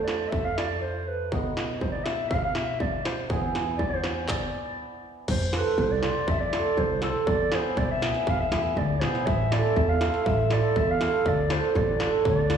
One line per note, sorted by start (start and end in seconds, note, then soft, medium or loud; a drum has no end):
0.00 0.30 F2 medium
0.00 3.35 A3 medium
0.00 1.39 C4 medium
0.00 1.09 D4 soft
0.00 1.39 F4 medium
0.00 0.30 D5 medium
0.08 snare medium
0.29 1.29 F2 medium
0.29 0.46 E5 medium
0.29 kick medium
0.45 0.59 F5 medium
0.58 0.81 D5 medium
0.58 snare medium
0.82 1.09 C5 medium
1.08 1.32 B4 medium
1.32 2.29 B1 medium
1.32 3.28 B3 medium
1.32 3.35 D#4 medium
1.32 4.58 F#4 medium
1.32 kick medium
1.57 snare medium
1.80 1.91 C5 medium
1.80 kick medium
1.92 2.05 D5 medium
2.04 2.29 E5 medium
2.04 snare medium
2.30 3.28 B1 medium
2.30 2.42 F5 medium
2.30 kick medium
2.44 2.57 F5 medium
2.55 2.80 E5 medium
2.55 snare medium
2.80 3.03 D5 medium
2.80 kick medium
3.05 3.28 C5 medium
3.05 snare medium
3.29 4.27 E2 medium
3.29 5.58 B3 medium
3.29 5.58 E4 medium
3.29 5.59 G#4 medium
3.29 kick medium
3.55 snare medium
3.78 3.92 D5 medium
3.78 kick medium
3.91 4.03 C5 medium
4.03 4.27 C5 medium
4.03 snare medium
4.28 4.75 D5 medium
4.28 kick medium
4.28 clap medium
5.28 5.58 F2 medium
5.28 5.52 C5 medium
5.28 kick medium
5.28 crash medium
5.52 5.65 C4 medium
5.52 5.65 F4 medium
5.52 5.65 A4 medium
5.52 snare medium
5.57 5.78 B4 medium
5.78 6.08 C2 medium
5.78 5.93 C5 medium
5.78 kick medium
5.92 6.31 D5 loud
6.03 6.15 C4 medium
6.03 6.15 F4 medium
6.03 6.15 C5 medium
6.03 snare medium
6.28 6.57 F2 medium
6.28 6.39 E5 medium
6.28 kick medium
6.40 6.80 D5 loud
6.53 6.65 C4 medium
6.53 6.65 F4 medium
6.53 6.65 A4 medium
6.53 snare medium
6.77 7.08 C2 medium
6.77 7.03 C5 medium
6.77 kick medium
7.01 7.14 C4 medium
7.01 7.14 F4 medium
7.01 7.14 A4 medium
7.01 7.29 A4 medium
7.01 snare medium
7.27 7.57 E2 medium
7.27 7.56 D5 medium
7.27 kick medium
7.52 7.64 B3 medium
7.52 7.64 E4 soft
7.52 7.65 G#4 medium
7.52 7.80 C5 medium
7.52 snare medium
7.77 8.07 B1 loud
7.77 7.90 D5 loud
7.77 kick medium
7.91 8.31 E5 loud
8.01 8.14 B3 medium
8.01 8.14 E4 medium
8.01 8.14 G#4 medium
8.01 snare medium
8.15 snare soft
8.27 8.42 E2 medium
8.27 8.40 F5 loud
8.27 kick medium
8.41 8.79 E5 medium
8.51 8.74 E2 medium
8.51 8.64 B3 medium
8.51 8.64 E4 soft
8.51 8.64 G#4 medium
8.51 snare medium
8.77 8.99 D2 medium
8.77 9.02 D5 medium
8.77 kick medium
9.00 9.24 B1 medium
9.00 9.13 B3 medium
9.00 9.13 E4 medium
9.00 9.13 G#4 medium
9.00 9.28 C5 medium
9.00 snare medium
9.15 snare soft
9.27 9.57 A1 medium
9.27 9.54 E5 medium
9.27 kick medium
9.52 9.64 C4 soft
9.52 9.64 E4 medium
9.52 9.64 A4 medium
9.52 9.79 D5 medium
9.52 snare medium
9.76 10.06 E2 medium
9.76 9.91 E5 medium
9.76 kick medium
9.89 10.27 F5 loud
10.01 10.13 C4 medium
10.01 10.13 E4 medium
10.01 10.13 A4 medium
10.01 snare medium
10.14 snare soft
10.25 10.56 A1 medium
10.25 10.54 E5 medium
10.25 kick medium
10.50 10.63 C4 medium
10.50 10.63 E4 medium
10.50 10.63 A4 medium
10.50 10.79 D5 medium
10.50 snare medium
10.76 11.06 E2 medium
10.76 10.92 E5 medium
10.76 kick medium
10.91 11.29 F5 loud
11.01 11.13 C4 medium
11.01 11.13 E4 medium
11.01 11.14 A4 medium
11.01 snare medium
11.26 11.56 D2 medium
11.26 11.54 D5 medium
11.26 kick medium
11.49 11.62 D4 medium
11.49 11.62 F4 medium
11.49 11.62 A4 medium
11.49 11.78 C5 medium
11.49 snare medium
11.75 12.05 A1 loud
11.75 12.13 D5 medium
11.75 kick medium
11.99 12.12 D4 medium
11.99 12.12 F4 medium
11.99 12.12 A4 medium
11.99 snare medium
12.25 12.55 D2 medium
12.25 12.57 D5 medium
12.25 kick medium
12.50 12.57 D4 medium
12.50 12.57 F4 medium
12.50 12.57 A4 medium
12.50 snare medium